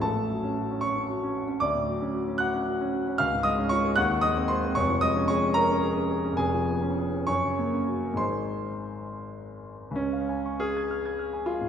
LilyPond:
\new Staff \with { instrumentName = "Grand piano" } { \time 6/8 \key d \lydian \tempo 4. = 75 << { <a' a''>4. <cis'' cis'''>4. | <d'' d'''>4. <fis'' fis'''>8 r4 | \key des \major <f'' f'''>8 <ees'' ees'''>8 <des'' des'''>8 <ges'' ges'''>8 <ees'' ees'''>8 <c'' c'''>8 | <des'' des'''>8 <ees'' ees'''>8 <des'' des'''>8 <bes' bes''>4. |
<aes' aes''>4. <des'' des'''>4. | <c'' c'''>2~ <c'' c'''>8 r8 | des'4 aes'4. f'8 | } \\ { <a,, a,>16 a16 fis16 cis'16 fis'16 cis'16 fis'16 cis'16 fis'16 cis'16 fis'16 cis'16 | d,16 a,16 fis16 cis'16 fis'16 cis'16 fis'16 cis'16 fis'16 cis'16 fis'16 cis'16 | des,16 aes,16 aes16 des'16 f'16 aes'16 ees,16 ees16 aes16 c'16 aes'16 c'16 | <f,, f,>16 f16 aes16 des'16 aes'16 des'16 aes'16 des'16 aes'16 des'16 aes'16 des'16 |
<f,, f,>16 f16 ces'16 des'16 aes'16 des'16 ges,16 des16 bes16 des'16 ges'16 bes'16 | <aes,, aes, aes ees'>2. | des,16 f''16 aes''16 des'''16 f'''16 aes'''16 f'''16 aes'''16 f'''16 aes''16 f''16 aes,16 | } >> }